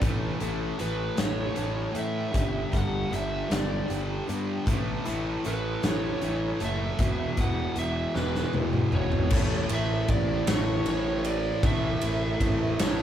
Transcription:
0.01 0.31 A1 medium
0.01 0.38 A2 medium
0.01 0.38 E3 medium
0.01 0.38 A3 loud
0.01 kick loud
0.01 closed hi-hat medium
0.39 0.70 A1 medium
0.39 0.77 A2 medium
0.39 0.77 E3 medium
0.39 0.77 A3 medium
0.39 2.35 A4 medium
0.39 closed hi-hat medium
0.78 1.09 A1 medium
0.78 1.15 A2 medium
0.78 1.16 E3 medium
0.78 1.15 A3 medium
0.78 1.55 C#4 medium
0.78 1.18 B4 loud
0.78 closed hi-hat medium
1.16 1.48 A1 medium
1.16 1.53 A2 medium
1.16 1.54 E3 medium
1.16 1.54 A3 medium
1.16 1.94 A3 medium
1.16 1.95 C#5 loud
1.16 snare loud
1.16 closed hi-hat medium
1.54 1.86 A1 medium
1.54 1.91 A2 medium
1.54 1.92 E3 medium
1.54 1.93 A3 medium
1.54 2.35 C#4 medium
1.54 closed hi-hat medium
1.93 2.31 A2 medium
1.93 2.25 A2 medium
1.93 2.32 E3 medium
1.93 2.32 A3 medium
1.93 2.35 A3 medium
1.93 closed hi-hat medium
1.99 2.73 E5 medium
2.32 2.64 G1 medium
2.32 2.71 G2 medium
2.32 4.28 G2 medium
2.32 2.72 D3 loud
2.32 2.71 G3 loud
2.32 kick loud
2.32 closed hi-hat medium
2.72 3.03 G1 medium
2.72 3.09 G2 medium
2.72 3.10 D3 medium
2.72 3.10 G3 medium
2.72 4.67 G4 medium
2.72 kick medium
2.72 closed hi-hat medium
2.77 3.13 F#5 loud
3.10 3.41 G1 medium
3.10 3.47 G2 medium
3.10 3.48 D3 medium
3.10 3.48 G3 medium
3.10 3.87 D4 medium
3.10 closed hi-hat medium
3.15 3.52 E5 medium
3.49 3.80 G1 loud
3.49 3.87 G2 medium
3.49 3.87 D3 medium
3.49 3.88 G3 medium
3.49 4.26 B3 medium
3.49 snare loud
3.49 closed hi-hat medium
3.54 3.90 D5 loud
3.88 4.19 G1 medium
3.88 4.26 G2 medium
3.88 4.27 D3 medium
3.88 4.26 G3 loud
3.88 4.67 D4 medium
3.88 closed hi-hat medium
4.27 4.65 G2 medium
4.27 4.58 G2 medium
4.27 4.65 D3 medium
4.27 4.65 G3 medium
4.27 4.67 B3 medium
4.27 closed hi-hat medium
4.65 4.96 A1 medium
4.65 5.04 A2 loud
4.65 6.61 A2 medium
4.65 5.06 E3 loud
4.65 5.05 A3 loud
4.65 kick loud
4.65 closed hi-hat medium
5.05 5.36 A1 medium
5.05 5.44 A2 medium
5.05 5.45 E3 medium
5.05 5.45 A3 loud
5.05 7.37 E4 medium
5.05 closed hi-hat medium
5.44 5.75 A1 medium
5.44 5.82 A2 medium
5.44 5.84 E3 medium
5.44 5.84 A3 medium
5.44 6.20 C#4 medium
5.44 5.84 B4 loud
5.44 closed hi-hat medium
5.82 6.12 A1 medium
5.82 6.21 A2 medium
5.82 6.23 E3 medium
5.82 6.59 A3 medium
5.82 6.22 A3 medium
5.82 snare loud
5.82 closed hi-hat medium
5.88 6.61 C#5 loud
6.21 6.52 A1 medium
6.21 6.60 A2 medium
6.21 6.61 E3 medium
6.21 6.60 A3 medium
6.21 7.00 C#4 medium
6.21 closed hi-hat medium
6.60 6.90 F#1 medium
6.60 6.98 A2 medium
6.60 7.00 E3 medium
6.60 7.00 A3 medium
6.60 6.98 A3 loud
6.60 closed hi-hat medium
6.65 7.38 E5 medium
6.99 7.28 E1 loud
6.99 8.93 E2 medium
6.99 7.36 E2 medium
6.99 7.37 B2 loud
6.99 7.37 E3 loud
6.99 kick loud
6.99 closed hi-hat medium
7.37 7.67 E1 medium
7.37 7.75 E2 medium
7.37 7.75 B2 medium
7.37 7.76 E3 medium
7.37 9.32 E4 medium
7.37 7.77 F#5 medium
7.37 kick medium
7.37 closed hi-hat medium
7.76 8.05 E1 medium
7.76 8.14 E2 medium
7.76 8.14 B2 medium
7.76 8.15 E3 medium
7.76 8.53 B3 medium
7.76 8.16 E5 medium
7.76 closed hi-hat medium
8.15 8.45 E1 loud
8.15 8.53 E2 medium
8.15 8.53 B2 medium
8.15 8.54 E3 medium
8.15 8.92 G#3 medium
8.15 8.54 B4 loud
8.15 snare medium
8.35 snare medium
8.53 8.83 E1 medium
8.53 8.92 E2 medium
8.53 8.92 B2 medium
8.53 8.93 E3 medium
8.53 9.32 B3 medium
8.53 high tom medium
8.73 mid tom medium
8.92 9.22 G#1 medium
8.92 9.30 E2 medium
8.92 9.30 B2 medium
8.92 9.30 E3 loud
8.92 9.32 G#3 medium
8.92 9.68 C#5 medium
8.92 mid tom medium
9.12 floor tom medium
9.30 9.64 A1 loud
9.30 11.61 A2 loud
9.30 11.64 E3 loud
9.30 11.65 A3 loud
9.30 kick loud
9.30 crash loud
9.69 10.02 A1 medium
9.69 ride medium
9.74 10.10 E5 medium
10.08 10.41 A1 medium
10.08 10.46 D5 medium
10.08 kick medium
10.08 ride medium
10.47 10.80 A1 medium
10.47 10.88 C#5 medium
10.47 snare loud
10.47 ride loud
10.86 11.50 A1 medium
10.86 11.24 C#5 medium
10.86 ride medium
11.25 11.66 D5 medium
11.25 ride medium
11.63 11.95 A1 loud
11.63 13.02 A2 medium
11.63 13.02 E3 loud
11.63 13.02 A3 loud
11.63 12.80 E5 loud
11.63 kick loud
11.63 ride loud
12.01 12.34 A1 medium
12.01 ride medium
12.40 12.73 A1 medium
12.40 kick medium
12.40 ride medium
12.79 13.02 A1 loud
12.79 13.02 C#5 medium
12.79 snare loud
12.79 ride loud

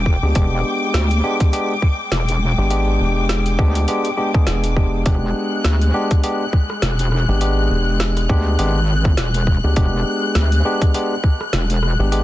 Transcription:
0.00 0.20 E1 loud
0.00 12.24 G#3 medium
0.00 5.02 G5 medium
0.00 5.06 D6 medium
0.06 kick medium
0.23 0.33 D2 medium
0.23 0.33 G#3 medium
0.23 0.33 B3 medium
0.23 0.33 D4 medium
0.23 0.33 G4 medium
0.35 0.63 E1 medium
0.35 1.21 G#3 medium
0.35 1.21 B3 medium
0.35 1.21 D4 medium
0.35 1.21 G4 medium
0.35 kick loud
0.35 closed hi-hat medium
0.94 1.21 D2 loud
0.94 snare loud
0.94 closed hi-hat medium
1.11 closed hi-hat soft
1.24 1.50 G#3 loud
1.24 1.50 B3 medium
1.24 1.50 D4 medium
1.24 1.50 G4 loud
1.40 kick loud
1.40 closed hi-hat medium
1.53 1.73 G#3 medium
1.53 1.73 B3 medium
1.53 1.73 D4 medium
1.53 1.73 G4 loud
1.53 closed hi-hat medium
1.82 kick medium
2.12 2.55 E1 medium
2.12 snare loud
2.12 closed hi-hat medium
2.29 closed hi-hat medium
2.58 2.98 G#1 medium
2.58 2.68 G#3 medium
2.58 2.68 B3 medium
2.58 2.68 D4 medium
2.58 2.68 G4 medium
2.70 3.56 G#3 medium
2.70 3.56 B3 medium
2.70 3.56 D4 medium
2.70 3.56 G4 medium
2.70 closed hi-hat medium
3.00 3.57 E1 loud
3.29 snare loud
3.29 closed hi-hat medium
3.46 closed hi-hat soft
3.59 3.86 D2 loud
3.59 3.85 G#3 loud
3.59 3.85 B3 medium
3.59 3.85 D4 medium
3.59 3.85 G4 loud
3.59 kick loud
3.75 closed hi-hat medium
3.88 4.08 G#3 medium
3.88 4.08 B3 medium
3.88 4.08 D4 medium
3.88 4.08 G4 loud
3.88 closed hi-hat medium
4.05 closed hi-hat soft
4.17 4.31 G#3 medium
4.17 4.31 B3 medium
4.17 4.31 D4 medium
4.17 4.31 G4 loud
4.34 4.74 G#3 medium
4.34 4.74 B3 medium
4.34 4.74 D4 medium
4.34 4.74 G#4 medium
4.34 kick loud
4.47 5.04 E1 medium
4.47 snare loud
4.47 closed hi-hat medium
4.64 closed hi-hat soft
4.76 5.03 G#3 medium
4.76 5.03 B3 medium
4.76 5.03 D4 medium
4.76 5.03 G4 medium
4.76 kick medium
5.06 5.33 E1 medium
5.06 5.91 G#3 medium
5.06 5.91 B3 medium
5.06 5.91 D4 medium
5.06 5.91 G4 medium
5.06 12.24 F#6 medium
5.06 kick loud
5.06 closed hi-hat medium
5.65 5.92 D2 medium
5.65 snare loud
5.65 closed hi-hat medium
5.82 closed hi-hat soft
5.94 6.21 G#3 loud
5.94 6.21 B3 medium
5.94 6.21 D4 medium
5.94 6.21 G4 loud
6.11 kick loud
6.11 closed hi-hat soft
6.23 6.44 G#3 medium
6.23 6.44 B3 medium
6.23 6.44 D4 medium
6.23 6.44 G4 loud
6.23 closed hi-hat medium
6.53 kick medium
6.70 cross-stick soft
6.82 7.26 E1 loud
6.82 snare loud
6.82 closed hi-hat medium
6.99 closed hi-hat medium
7.12 cross-stick medium
7.28 7.69 G#1 medium
7.28 7.39 G#3 medium
7.28 7.39 B3 medium
7.28 7.39 D4 medium
7.28 7.39 G4 medium
7.41 8.27 G#3 medium
7.41 8.27 B3 medium
7.41 8.27 D4 medium
7.41 8.27 G4 medium
7.41 closed hi-hat medium
7.70 8.27 E1 loud
8.00 snare loud
8.00 closed hi-hat medium
8.17 cross-stick soft
8.17 closed hi-hat soft
8.29 8.57 D2 medium
8.29 8.56 G#3 loud
8.29 8.56 B3 medium
8.29 8.56 D4 medium
8.29 8.56 G4 loud
8.29 kick loud
8.59 9.16 G#1 medium
8.59 8.79 G#3 medium
8.59 8.79 B3 medium
8.59 8.79 D4 medium
8.59 8.79 G4 loud
8.59 closed hi-hat medium
9.05 kick loud
9.17 9.61 E1 loud
9.17 snare loud
9.17 closed hi-hat medium
9.34 closed hi-hat soft
9.47 kick medium
9.64 9.75 D2 loud
9.64 9.74 G#3 medium
9.64 9.74 B3 medium
9.64 9.74 D4 medium
9.64 9.74 G4 medium
9.76 10.04 E1 medium
9.76 10.62 G#3 medium
9.76 10.62 B3 medium
9.76 10.62 D4 medium
9.76 10.62 G4 medium
9.76 kick loud
9.76 closed hi-hat medium
10.35 10.63 D2 loud
10.35 snare loud
10.35 closed hi-hat medium
10.52 closed hi-hat soft
10.65 10.91 G#3 medium
10.65 10.91 B3 medium
10.65 10.91 D4 medium
10.65 10.91 G4 loud
10.82 kick loud
10.82 closed hi-hat medium
10.94 11.14 G#3 medium
10.94 11.14 B3 medium
10.94 11.14 D4 medium
10.94 11.14 G4 loud
10.94 closed hi-hat medium
11.24 kick medium
11.41 cross-stick medium
11.53 11.97 E1 medium
11.53 snare loud
11.53 closed hi-hat medium
11.70 closed hi-hat medium
11.83 cross-stick medium
11.99 12.24 G#1 loud
11.99 12.09 G#3 medium
11.99 12.09 B3 medium
11.99 12.09 D4 medium
11.99 12.09 G4 medium
12.12 12.24 G#3 medium
12.12 12.24 B3 medium
12.12 12.24 D4 medium
12.12 12.24 G4 medium
12.12 closed hi-hat medium

